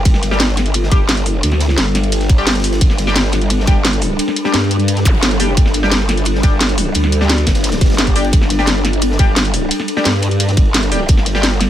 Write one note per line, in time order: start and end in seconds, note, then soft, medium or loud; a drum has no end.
0.00 11.70 G3 medium
0.00 11.70 D4 medium
0.00 11.70 A4 medium
0.05 0.90 G1 loud
0.05 2.80 C5 loud
0.05 kick loud
0.05 closed hi-hat medium
0.05 ride loud
0.14 snare soft
0.23 snare medium
0.23 closed hi-hat medium
0.23 ride medium
0.31 0.39 G3 medium
0.31 0.39 D4 medium
0.31 0.39 G4 loud
0.31 snare medium
0.31 snare soft
0.40 snare loud
0.40 closed hi-hat medium
0.40 ride medium
0.49 snare medium
0.57 snare soft
0.57 closed hi-hat medium
0.57 ride medium
0.66 closed hi-hat soft
0.74 closed hi-hat medium
0.74 ride medium
0.83 snare medium
0.91 1.42 G1 medium
0.91 1.00 G3 medium
0.91 1.00 D4 medium
0.91 1.00 G4 medium
0.91 kick loud
0.91 snare medium
0.91 closed hi-hat medium
0.91 ride medium
1.09 snare loud
1.09 closed hi-hat loud
1.09 ride medium
1.17 snare soft
1.17 closed hi-hat soft
1.26 open hi-hat medium
1.26 ride medium
1.43 1.76 D2 loud
1.43 closed hi-hat medium
1.43 ride loud
1.51 snare soft
1.51 ride soft
1.60 snare loud
1.60 closed hi-hat medium
1.60 ride medium
1.69 snare medium
1.69 snare soft
1.77 2.80 G1 loud
1.77 snare medium
1.77 snare loud
1.77 closed hi-hat medium
1.77 ride medium
1.86 snare medium
1.95 snare soft
1.95 closed hi-hat medium
1.95 ride medium
2.04 closed hi-hat soft
2.12 closed hi-hat medium
2.12 ride loud
2.21 snare medium
2.21 closed hi-hat soft
2.29 kick loud
2.29 closed hi-hat medium
2.29 ride medium
2.38 2.51 G3 medium
2.38 2.51 D4 medium
2.38 2.51 G4 medium
2.38 ride soft
2.47 snare loud
2.47 snare medium
2.47 closed hi-hat medium
2.47 ride medium
2.51 snare loud
2.51 ride medium
2.55 snare medium
2.55 closed hi-hat soft
2.55 ride medium
2.60 snare medium
2.60 ride medium
2.63 snare soft
2.63 open hi-hat medium
2.63 ride medium
2.72 snare medium
2.72 ride medium
2.81 3.66 G1 loud
2.81 5.56 A#4 medium
2.81 kick loud
2.81 closed hi-hat medium
2.81 ride medium
2.90 snare soft
2.98 snare medium
2.98 closed hi-hat medium
2.98 ride medium
3.07 3.15 G3 medium
3.07 3.15 D4 medium
3.07 3.15 G4 loud
3.07 snare medium
3.07 snare soft
3.16 snare loud
3.16 closed hi-hat medium
3.16 ride medium
3.24 snare medium
3.32 snare soft
3.32 closed hi-hat medium
3.32 ride medium
3.41 closed hi-hat soft
3.50 closed hi-hat medium
3.50 ride loud
3.60 snare medium
3.67 4.18 G1 loud
3.67 3.76 G3 medium
3.67 3.76 D4 medium
3.67 3.76 G4 medium
3.67 kick loud
3.67 snare soft
3.67 closed hi-hat medium
3.67 ride medium
3.85 snare loud
3.85 closed hi-hat medium
3.85 ride medium
3.93 snare soft
3.93 closed hi-hat soft
4.01 open hi-hat medium
4.01 ride medium
4.19 closed hi-hat medium
4.19 ride medium
4.28 snare soft
4.28 ride soft
4.36 closed hi-hat medium
4.36 ride medium
4.44 4.53 G3 medium
4.44 4.53 D4 medium
4.44 4.53 G4 medium
4.44 snare medium
4.44 snare soft
4.54 5.04 G2 loud
4.54 snare loud
4.54 closed hi-hat medium
4.54 ride medium
4.62 snare medium
4.71 closed hi-hat medium
4.71 ride medium
4.80 closed hi-hat soft
4.88 closed hi-hat medium
4.88 ride medium
4.97 snare soft
4.97 closed hi-hat soft
5.05 5.56 G1 loud
5.05 kick loud
5.05 closed hi-hat medium
5.05 ride medium
5.05 zap medium
5.14 ride soft
5.23 snare loud
5.23 closed hi-hat loud
5.23 ride medium
5.31 snare soft
5.31 closed hi-hat soft
5.40 5.48 G3 medium
5.40 5.48 D4 medium
5.40 5.48 G4 medium
5.40 open hi-hat medium
5.40 ride medium
5.57 6.42 G1 loud
5.57 8.32 D5 medium
5.57 kick loud
5.57 closed hi-hat loud
5.57 ride medium
5.66 snare soft
5.74 snare medium
5.74 closed hi-hat medium
5.74 ride medium
5.83 5.91 G3 medium
5.83 5.91 D4 medium
5.83 5.91 G4 loud
5.83 snare medium
5.83 snare soft
5.92 snare loud
5.92 closed hi-hat loud
5.92 ride medium
6.00 snare medium
6.09 snare soft
6.09 closed hi-hat medium
6.09 ride medium
6.17 closed hi-hat soft
6.25 closed hi-hat loud
6.25 ride medium
6.35 snare medium
6.43 6.94 G1 loud
6.43 6.52 G3 medium
6.43 6.52 D4 medium
6.43 6.52 G4 medium
6.43 kick loud
6.43 snare soft
6.43 closed hi-hat medium
6.43 ride medium
6.61 snare loud
6.61 closed hi-hat loud
6.61 ride medium
6.69 snare soft
6.69 closed hi-hat soft
6.77 open hi-hat medium
6.77 ride medium
6.94 7.45 D2 loud
6.94 closed hi-hat medium
6.94 ride loud
7.04 snare soft
7.04 ride soft
7.12 closed hi-hat medium
7.12 ride medium
7.21 7.29 G3 medium
7.21 7.29 D4 medium
7.21 7.29 G4 medium
7.21 snare medium
7.21 snare soft
7.29 snare loud
7.29 closed hi-hat medium
7.29 ride medium
7.38 snare soft
7.38 closed hi-hat soft
7.46 7.80 G1 loud
7.46 kick medium
7.46 snare loud
7.46 snare soft
7.46 closed hi-hat medium
7.46 ride medium
7.55 snare medium
7.55 closed hi-hat soft
7.55 ride medium
7.64 snare medium
7.64 closed hi-hat loud
7.64 ride medium
7.64 swell medium
7.68 snare medium
7.68 ride medium
7.72 snare loud
7.72 closed hi-hat soft
7.72 ride medium
7.81 8.32 G1 loud
7.81 kick loud
7.81 snare medium
7.81 closed hi-hat medium
7.81 ride medium
7.85 snare medium
7.85 ride medium
7.90 snare medium
7.90 ride medium
7.94 snare loud
7.94 ride medium
7.98 snare loud
7.98 closed hi-hat loud
7.98 ride medium
8.07 kick medium
8.07 snare soft
8.07 closed hi-hat soft
8.15 8.24 G3 medium
8.15 8.24 D4 medium
8.15 8.24 G4 medium
8.15 snare medium
8.15 open hi-hat medium
8.15 ride medium
8.24 ride medium
8.33 9.18 G1 loud
8.33 11.08 A#4 medium
8.33 kick loud
8.33 closed hi-hat loud
8.33 ride medium
8.41 snare soft
8.50 snare medium
8.50 closed hi-hat medium
8.50 ride medium
8.59 8.67 G3 medium
8.59 8.67 D4 medium
8.59 8.67 G4 medium
8.59 snare medium
8.59 snare soft
8.67 snare loud
8.67 closed hi-hat loud
8.67 ride medium
8.76 snare medium
8.84 snare soft
8.84 closed hi-hat medium
8.84 ride medium
8.93 closed hi-hat soft
9.02 closed hi-hat loud
9.02 ride loud
9.11 snare medium
9.19 9.70 G1 loud
9.19 9.27 G3 medium
9.19 9.27 D4 medium
9.19 9.27 G4 medium
9.19 kick loud
9.19 snare soft
9.19 closed hi-hat medium
9.19 ride medium
9.36 snare loud
9.36 closed hi-hat loud
9.36 ride medium
9.45 snare soft
9.45 closed hi-hat soft
9.54 open hi-hat medium
9.54 ride medium
9.71 closed hi-hat loud
9.71 ride loud
9.79 snare soft
9.79 ride soft
9.88 closed hi-hat medium
9.88 ride medium
9.96 10.05 G3 medium
9.96 10.05 D4 medium
9.96 10.05 G4 medium
9.96 snare medium
9.96 snare soft
10.04 10.56 G2 loud
10.04 snare loud
10.04 closed hi-hat loud
10.04 ride medium
10.15 snare medium
10.22 closed hi-hat medium
10.22 ride medium
10.31 closed hi-hat soft
10.40 closed hi-hat loud
10.40 ride medium
10.48 snare medium
10.48 closed hi-hat soft
10.57 11.07 G1 loud
10.57 kick loud
10.57 closed hi-hat medium
10.57 ride medium
10.65 ride soft
10.74 snare loud
10.74 closed hi-hat loud
10.74 ride medium
10.83 snare soft
10.83 closed hi-hat soft
10.92 11.00 G3 medium
10.92 11.00 D4 medium
10.92 11.00 G4 medium
10.92 open hi-hat medium
10.92 ride medium
11.08 11.70 G1 loud
11.08 11.70 C5 loud
11.08 kick loud
11.08 closed hi-hat medium
11.08 ride loud
11.17 snare soft
11.26 snare medium
11.26 closed hi-hat medium
11.26 ride medium
11.35 11.43 G3 medium
11.35 11.43 D4 medium
11.35 11.43 G4 loud
11.35 snare medium
11.35 snare soft
11.43 snare loud
11.43 closed hi-hat medium
11.43 ride medium
11.51 snare medium
11.60 snare soft
11.60 closed hi-hat medium
11.60 ride medium